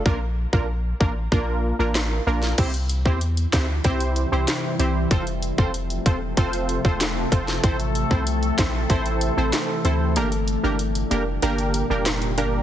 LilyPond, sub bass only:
\new Staff \with { instrumentName = "Sub bass" } { \clef bass \time 4/4 \key c \mixolydian \tempo 4 = 95 bes,,8. bes,,8. a,,8 bes,,8. a,,8. bes,,8 | c,8. e,8. d,8 c,8. c,16 r8 c,8 | f,,8. f,,8. e,,8 f,,8. e,,8. f,,8 | a,,8. c,8. bes,,8 a,,8. a,,16 r8 d,8 |
g,,8. g,,8. f,,8 g,,8. f,,8. g,,8 | }